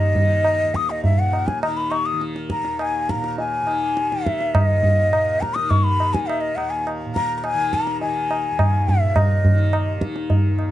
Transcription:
Already playing: D#2 A#2 D#3 D#5
0.14 D#3, tabla ge
0.44 tabla na
0.64 D#2
0.74 D#6, tabla ke
0.89 D#5, tabla te
1.04 E5, tabla tin, tabla ge
1.13 A#2
1.19 F#5
1.33 tabla na
1.47 G#5, tabla ke
1.63 D#3 A#5, tabla na
1.77 B5
1.91 C#6, tabla na
2.06 D#6
2.13 D#3
2.21 tabla te
2.36 tabla te
2.50 A#5, tabla ke
2.62 D#2, tabla te
2.79 G#5, tabla na
3.09 A#2 A#5, tabla ke
3.24 tabla te
3.38 G#5, tabla tin
3.62 D#3
3.67 tabla na
3.97 tabla te
4.11 D#3, tabla te
4.26 E5, tabla ke
4.41 tabla te
4.55 D#5, tabla na, tabla ge
4.60 D#2
4.83 tabla ge
5.10 A#2, tabla na
5.41 A#5, tabla ke
5.54 D#3 D#6, tabla te
5.70 C#6, tabla tin, tabla ge
5.84 B5
6.00 tabla na
6.07 D#3
6.13 G#5, tabla ke
6.27 E5, tabla na
6.41 D#5
6.56 D#2 F#5, tabla na
6.70 G#5
6.87 tabla na
7.05 A#2
7.15 A#5, tabla ke
7.38 A#5
7.44 G#5, tabla na
7.54 D#3
7.73 A#5, tabla ke
7.87 tabla te
8.01 D#3 G#5, tabla tin
8.31 tabla na
8.51 D#2
8.59 tabla na, tabla ge
8.88 E5, tabla ge
9.00 A#2
9.16 D#5, tabla na, tabla ge
9.45 tabla ge
9.49 D#3
9.73 tabla na
9.97 D#3
10.01 tabla ke
10.16 tabla te
10.30 tabla tin, tabla ge
10.45 D#2
10.59 tabla na

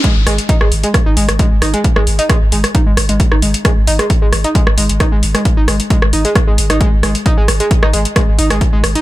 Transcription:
0.04 G#3, kick, closed hi-hat
0.16 G#1
0.27 G#1 G#3, cross-stick, open hi-hat
0.38 closed hi-hat
0.49 D#4, kick, closed hi-hat
0.61 G#1 G#3, cross-stick
0.72 G#1, open hi-hat
0.83 G#3, closed hi-hat
0.94 kick, cross-stick, closed hi-hat
1.06 G#1 D#4
1.17 G#1 G#3, open hi-hat
1.29 G#1, cross-stick, closed hi-hat
1.39 G#3, kick, closed hi-hat
1.51 G#1
1.62 G#1 D#4, cross-stick, open hi-hat
1.74 G#3, closed hi-hat
1.84 kick, closed hi-hat
1.96 G#1 G#3, cross-stick
2.07 G#1, open hi-hat
2.19 D#4, closed hi-hat
2.29 G#3, kick, cross-stick, closed hi-hat
2.41 G#1
2.52 G#1 G#3, open hi-hat
2.64 cross-stick, closed hi-hat
2.75 D#4, kick, closed hi-hat
2.86 G#1 G#3
2.97 G#1, cross-stick, open hi-hat
3.09 G#1 G#3, closed hi-hat
3.20 kick, closed hi-hat
3.32 G#1 D#4, cross-stick
3.42 G#1 G#3, open hi-hat
3.54 closed hi-hat
3.65 G#3, kick, cross-stick, closed hi-hat
3.77 G#1
3.87 G#1 D#4, open hi-hat
3.99 G#3, cross-stick, closed hi-hat
4.10 kick, closed hi-hat
4.22 G#1 G#3
4.33 G#1, cross-stick, open hi-hat
4.44 D#4, closed hi-hat
4.55 G#3, kick, closed hi-hat
4.67 G#1, cross-stick
4.78 G#1 G#3, open hi-hat
4.89 G#1, closed hi-hat
5.00 D#4, kick, cross-stick, closed hi-hat
5.12 G#1 G#3
5.23 G#1, open hi-hat
5.35 G#3, cross-stick, closed hi-hat
5.45 kick, closed hi-hat
5.57 G#1 D#4
5.68 G#1 G#3, cross-stick, open hi-hat
5.80 closed hi-hat
5.90 G#3, kick, closed hi-hat
6.02 G#1, cross-stick
6.13 G#1 D#4, open hi-hat
6.25 G#3, closed hi-hat
6.35 kick, cross-stick, closed hi-hat
6.47 G#1 G#3
6.58 G#1, open hi-hat
6.70 G#1 D#4, cross-stick, closed hi-hat
6.81 G#3, kick, closed hi-hat
6.92 G#1
7.03 G#1 G#3, cross-stick, open hi-hat
7.15 closed hi-hat
7.26 D#4, kick, closed hi-hat
7.38 G#1 G#3
7.48 G#1, cross-stick, open hi-hat
7.60 G#3, closed hi-hat
7.71 kick, closed hi-hat
7.83 G#1 D#4, cross-stick
7.93 G#1 G#3, open hi-hat
8.05 closed hi-hat
8.16 G#3, kick, cross-stick, closed hi-hat
8.28 G#1
8.38 G#1 D#4, open hi-hat
8.50 G#1 G#3, cross-stick, closed hi-hat
8.61 kick, closed hi-hat
8.73 G#1 G#3
8.84 G#1, cross-stick, open hi-hat
8.95 D#4, closed hi-hat

